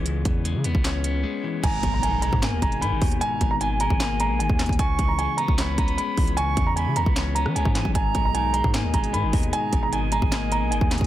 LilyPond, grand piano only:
\new Staff \with { instrumentName = "Grand piano" } { \time 4/4 \key gis \minor \tempo 4 = 152 r1 | gis''8. ais''16 gis''8 ais''4 ais''8 b''4 | gis''8. ais''16 gis''8 ais''4 ais''8 gis''8 r8 | gis''8. ais''16 gis''8 ais''4 ais''8 b''4 |
gis''8. ais''16 gis''8 ais''4 ais''8 gis''8 r8 | gis''8. ais''16 gis''8 ais''4 ais''8 b''4 | gis''8. ais''16 gis''8 ais''4 ais''8 gis''8 r8 | }